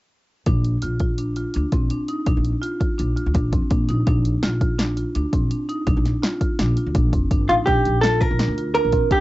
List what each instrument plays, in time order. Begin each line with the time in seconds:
0.46 upright bass A#1, marimba D4, kick, closed hi-hat
0.64 closed hi-hat
0.82 upright bass A#1, marimba F4, closed hi-hat
1.00 marimba F4, kick, closed hi-hat
1.18 marimba D4, closed hi-hat
1.36 marimba F4, closed hi-hat
1.54 upright bass D2, marimba D4, closed hi-hat
1.72 upright bass A#1, marimba C4, kick, closed hi-hat
1.90 marimba D4, closed hi-hat
2.08 marimba D#4, closed hi-hat
2.26 upright bass A#1, marimba D4, kick, closed hi-hat
2.37 upright bass A#1
2.45 closed hi-hat
2.62 marimba F4, closed hi-hat
2.80 marimba F4, kick, closed hi-hat
2.98 upright bass A#1, marimba D4, closed hi-hat
3.16 marimba F4, closed hi-hat
3.26 upright bass D2
3.34 upright bass A#1, marimba D4, kick, closed hi-hat
3.52 upright bass F2, marimba C4, kick, closed hi-hat
3.70 upright bass A#2, marimba D4, kick, closed hi-hat
3.89 upright bass A#1, marimba D#4, closed hi-hat
4.07 upright bass A#1, marimba D4, kick, closed hi-hat
4.25 closed hi-hat
4.43 upright bass A#1, marimba F4, snare, closed hi-hat
4.61 marimba F4, kick, closed hi-hat
4.79 marimba D4, snare, closed hi-hat
4.97 marimba F4, closed hi-hat
5.15 upright bass D2, marimba D4, closed hi-hat
5.33 upright bass A#1, marimba C4, kick, closed hi-hat
5.51 marimba D4, closed hi-hat
5.69 marimba D#4, closed hi-hat
5.87 upright bass A#1, marimba D4, kick, closed hi-hat
5.97 upright bass A#1
6.05 snare, closed hi-hat
6.23 marimba F4, snare, closed hi-hat
6.41 marimba F4, kick, closed hi-hat
6.59 upright bass A#1, marimba D4, snare, closed hi-hat
6.77 marimba F4, closed hi-hat
6.86 upright bass D2
6.95 upright bass A#1, marimba D4, kick, closed hi-hat
7.13 upright bass F1, marimba C4, kick, closed hi-hat
7.31 upright bass G1, marimba D4, kick, closed hi-hat
7.48 upright bass A1, marimba D#4, hollow-body jazz guitar F4, closed hi-hat
7.66 upright bass A#1, marimba D4, hollow-body jazz guitar G4, kick, closed hi-hat
7.85 upright bass A#1, closed hi-hat
8.01 marimba F4, hollow-body jazz guitar A4, snare, closed hi-hat
8.21 marimba F4, hollow-body jazz guitar A#4, kick, closed hi-hat
8.31 upright bass A#1
8.39 marimba D4, snare, closed hi-hat
8.48 upright bass D2
8.58 marimba F4, closed hi-hat
8.75 marimba D4, hollow-body jazz guitar A#4, closed hi-hat
8.85 upright bass A#1
8.92 marimba C4, kick, closed hi-hat
9.11 marimba D4, hollow-body jazz guitar G4, kick, closed hi-hat